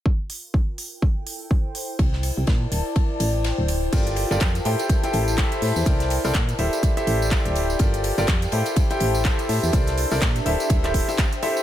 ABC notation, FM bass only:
X:1
M:4/4
L:1/16
Q:"Swing 16ths" 1/4=124
K:Gdor
V:1 name="FM bass" clef=bass
z16 | C,,3 C,, B,, z D,,, z3 A,,,3 D,,,3 | G,,,3 G,,, F,, z A,, z3 A,,,3 z A,, E,, | C,,3 C,, B,, z D,,, z3 A,,,3 D,,,3 |
G,,,3 G,,, F,, z A,, z3 A,,,3 z A,, E,, | C,,3 C,, B,, z D,,, z D,,,3 z4 z |]